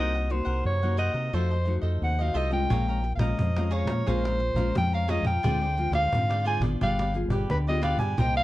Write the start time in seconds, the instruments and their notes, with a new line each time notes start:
Already playing: fingered electric bass C2, nylon-string guitar C3 A#3 D#4 F#4, cavaquinho D#4 A#4 C5 F#5
0.00 soprano saxophone D#5
0.14 cavaquinho A#4 C5 F#5
0.30 nylon-string guitar A#3 D#4 F#4, soprano saxophone C5, muted cavaquinho stroke
0.45 fingered electric bass C2, cavaquinho A#4 C5 F#5
0.65 fingered electric bass F#2, nylon-string guitar C3, soprano saxophone C#5
0.83 nylon-string guitar A#3 D#4 F#4, cavaquinho A#4 C5 F#5
0.97 cavaquinho D#4 A#4 C5 F#5, soprano saxophone D#5
1.14 fingered electric bass C3, cavaquinho A#4 C5 F#5
1.33 fingered electric bass F2, nylon-string guitar F3 A3 D#4 F#4, cavaquinho F4 A4 C5 D#5, soprano saxophone C5
1.51 cavaquinho A4 C5 D#5
1.65 nylon-string guitar A3 D#4 F#4, muted cavaquinho stroke
1.81 fingered electric bass F2, cavaquinho A4 C5 D#5
2.02 fingered electric bass D#2, nylon-string guitar C3, soprano saxophone F#5
2.19 nylon-string guitar A3 D#4 F#4, cavaquinho A4 C5 D#5, soprano saxophone F5
2.34 fingered electric bass C2, cavaquinho F4 A4 C5 D#5, soprano saxophone D#5
2.50 nylon-string guitar G#3 C#4 F4, cavaquinho A4 C5 D#5, soprano saxophone G5
2.70 fingered electric bass A#1, nylon-string guitar A#2, cavaquinho G#4 C#5 F5 A#5, cajon bass, cajon slap
2.88 cavaquinho C#5 F5 A#5
3.04 muted cavaquinho stroke, cajon slap
3.15 fingered electric bass A#1, soprano saxophone F5
3.19 nylon-string guitar G#3 C#4 F4, cavaquinho C#5 F5 A#5, soprano saxophone D#5, cajon bass, cajon slap
3.39 fingered electric bass F2, nylon-string guitar F3, cajon bass
3.56 nylon-string guitar G#3 C#4 F4, cavaquinho C#5 F5 A#5, cajon slap
3.66 soprano saxophone D#5
3.71 cavaquinho G#4 C#5 F5 A#5, soprano saxophone C#5, cajon slap
3.85 fingered electric bass A#2, cavaquinho C#5 F5 A#5, cajon bass, cajon slap
4.06 fingered electric bass A#1, nylon-string guitar A#2 G#3 C#4 F4, cavaquinho G#4 C#5 F5 A#5, soprano saxophone C5, cajon bass
4.24 cavaquinho C#5 F5 A#5, cajon slap
4.39 muted cavaquinho stroke
4.54 fingered electric bass A#1, nylon-string guitar G#3 C#4 F4, cavaquinho C#5 F5 A#5, cajon bass
4.75 fingered electric bass F2, nylon-string guitar F3, soprano saxophone G5, cajon bass, cajon slap
4.93 cavaquinho C#5 F5 A#5, soprano saxophone F5
5.08 nylon-string guitar G#3 C#4 F4, cavaquinho G#4 C#5 F5 A#5, soprano saxophone D#5, cajon slap
5.22 fingered electric bass F2, cavaquinho C#5 F5 A#5, cajon bass
5.26 soprano saxophone G5
5.43 fingered electric bass D2, nylon-string guitar D3 G#3 C4 F4, cavaquinho F4 G#4 C5 D5, cajon bass, cajon slap
5.61 cavaquinho G#4 C5 D5
5.77 nylon-string guitar G#3 C4 F4, muted cavaquinho stroke, cajon slap
5.91 fingered electric bass D2, cavaquinho G#4 C5 D5, soprano saxophone F5, cajon bass, cajon slap
6.13 fingered electric bass G#2, nylon-string guitar D3 G#3 C4 F4, cajon bass
6.30 cavaquinho G#4 C5 D5, cajon slap
6.45 cavaquinho F4 G#4 C5 D5, soprano saxophone G#5, cajon slap
6.59 fingered electric bass G#1, nylon-string guitar B3 F4 G#4, cavaquinho G#4 C5 D5, cajon bass, cajon slap
6.81 fingered electric bass G1, nylon-string guitar G3, cavaquinho F4 G4 B4 D5, soprano saxophone F5, cajon bass
6.99 cavaquinho G4 B4 D5, cajon slap
7.14 nylon-string guitar B3 F4 G#4, muted cavaquinho stroke, cajon slap
7.28 fingered electric bass G1, cavaquinho G4 B4 D5, cajon bass
7.50 fingered electric bass D2, nylon-string guitar D3, soprano saxophone B4, cajon bass, cajon slap
7.67 nylon-string guitar B3 F4 G#4, cavaquinho G4 B4 D5, soprano saxophone D#5
7.82 cavaquinho F4 G4 B4 D5, soprano saxophone F5, cajon slap
7.96 fingered electric bass G2, cavaquinho G4 B4 D5, soprano saxophone G#5, cajon bass
8.17 fingered electric bass C2, nylon-string guitar C3 A#3 D#4 G4, cavaquinho D#4 A#4 C5 D#5, soprano saxophone G5, cajon bass, cajon slap
8.36 cavaquinho A#4 C5 D#5, soprano saxophone F5